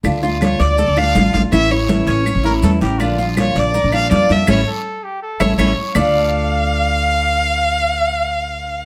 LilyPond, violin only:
\new Staff \with { instrumentName = "Violin" } { \time 4/4 \key d \minor \tempo 4 = 162 r4 cis''8 d''4 f''4 f''8 | e''8 cis''4 cis''4. r4 | r4 cis''8 d''4 f''8 d''8 e''8 | cis''8 r2 cis''8 cis''8 r8 |
f''1~ | f''1 | }